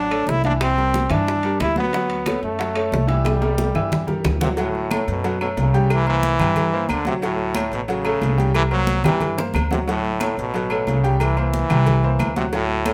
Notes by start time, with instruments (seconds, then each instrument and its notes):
Already playing: upright bass A1, trombone D4
0.11 grand piano A3 A4 C#5, high conga, high timbale, claves
0.27 upright bass C2, trombone E4, high bongo, low bongo, high conga
0.44 grand piano E3 E4 E5, trombone D4, high conga, high timbale
0.61 trombone C4, high bongo, high timbale, claves
0.77 grand piano G3 G4 A#4, high bongo, high conga
0.94 high bongo, high conga, high timbale
1.10 upright bass G2, grand piano E3 E4 E5, trombone D4, high bongo, high conga, low conga, high timbale, claves
1.27 high bongo, high conga
1.43 grand piano G3 G4 A#4, high bongo, high conga, high timbale
1.60 upright bass D2, trombone E4, high bongo, low bongo, high conga, high timbale, claves
1.76 grand piano F#3 F#4 F#5, trombone B3, high conga
1.93 grand piano F#3 F#4 F#5, high bongo, high conga, high timbale
2.10 high conga, high timbale
2.26 grand piano A3 A4 C#5, high bongo, high conga, high timbale, claves
2.43 upright bass F#2, trombone A3, high conga
2.59 grand piano F#3 F#4 F#5, high bongo, high conga, high timbale
2.75 grand piano A3 A4 C#5, high conga, high timbale, claves
2.92 upright bass C2, high bongo, low bongo, high conga
3.07 grand piano E3 E4 E5, trombone G3, high conga, high timbale
3.25 high bongo, high conga, high timbale, claves
3.41 grand piano G3 G4 A#4, high bongo, high conga, high timbale
3.58 high bongo, high conga, high timbale
3.74 upright bass G2, grand piano E3 E4 E5, high bongo, low conga, low timbale, claves
3.92 high bongo, low conga
4.07 grand piano G3 G4 A#4, high bongo, low conga, low timbale
4.24 upright bass D2, high bongo, low bongo, low conga, low timbale, claves
4.41 trombone C3, grand piano F#3 F#4 F#5, low conga, low timbale
4.57 trombone A2, grand piano F#3 F#4 F#5, cowbell, high conga, low agogo
4.75 high conga
4.91 grand piano A3 A4 C#5, cowbell, high conga, low agogo, claves
5.08 upright bass F#2, trombone B2, cowbell, high conga
5.24 grand piano F#3 F#4 F#5, cowbell, high conga, low agogo
5.41 trombone B2, grand piano A3 A4 C#5, high conga, low agogo, claves
5.57 upright bass C2, trombone C#3, cowbell, high conga, low timbale, low agogo
5.74 grand piano G3 G4 G5, cowbell
5.90 trombone E3, cowbell, high conga, low agogo, claves
6.07 trombone E3, grand piano A#3 A#4 C5, high conga, low agogo
6.23 cowbell, high conga
6.39 upright bass G2, grand piano G3 G4 G5, cowbell, high conga, low conga, low agogo, claves
6.56 cowbell, high conga, low conga, low agogo
6.72 grand piano A#3 A#4 C5, high conga
6.89 upright bass D2, trombone D3, cowbell, high conga, low agogo, claves
7.05 trombone C3, grand piano F#3 F#4 F#5, cowbell, high conga
7.22 trombone A2, grand piano F#3 F#4 F#5, cowbell, high conga, low agogo
7.39 high conga
7.55 grand piano A3 A4 C#5, cowbell, high conga, low agogo, claves
7.71 upright bass A1, trombone B2, cowbell, high conga
7.88 trombone C#3, grand piano F#3 F#4 F#5, cowbell, high conga, low agogo
8.05 grand piano A3 A4 C#5, high conga, low agogo, claves
8.21 upright bass C2, cowbell, high conga, low timbale, low agogo
8.37 grand piano G3 G4 G5, cowbell, high conga
8.54 trombone E3, cowbell, high conga, low agogo, claves
8.71 trombone F#3, grand piano A#3 A#4 C5, high conga, low agogo
8.87 cowbell, high conga
9.04 upright bass G2, trombone E3, grand piano G3 G4 G5, cowbell, high bongo, high conga, low conga, low agogo, claves
9.21 cowbell, high conga, low conga, low agogo
9.37 grand piano A#3 A#4 C5, low bongo, high conga
9.54 upright bass D2, cowbell, low bongo, high conga, low agogo, claves
9.71 trombone C3, grand piano F#3 F#4 F#5, cowbell, low bongo, high conga
9.87 trombone A2, grand piano F#3 F#4 F#5, cowbell, high conga, low agogo
10.04 high conga
10.20 grand piano A3 A4 C#5, cowbell, high conga, low agogo, claves
10.37 upright bass A1, trombone B2, cowbell, high conga
10.54 grand piano F#3 F#4 F#5, cowbell, high conga, low agogo
10.70 grand piano A3 A4 C#5, high conga, low agogo, claves
10.87 upright bass C2, trombone C#3, cowbell, high conga, low timbale, low agogo
11.04 grand piano G3 G4 G5, cowbell
11.20 trombone E3, cowbell, high conga, low agogo, claves
11.36 trombone E3, grand piano A#3 A#4 C5, high conga, low agogo
11.54 cowbell, high conga
11.70 upright bass C2, grand piano G3 G4 G5, cowbell, high conga, low conga, low agogo, claves
11.86 cowbell, high conga, low conga, low agogo
12.03 grand piano A#3 A#4 C5, high conga
12.19 upright bass D2, cowbell, high conga, low timbale, low agogo, claves
12.36 trombone C3, grand piano F#3 F#4 F#5, cowbell, high conga
12.53 trombone A2, grand piano F#3 F#4 F#5, cowbell, high conga, low agogo
12.69 high conga
12.85 grand piano A3 A4 C#5, cowbell, high conga, low agogo, claves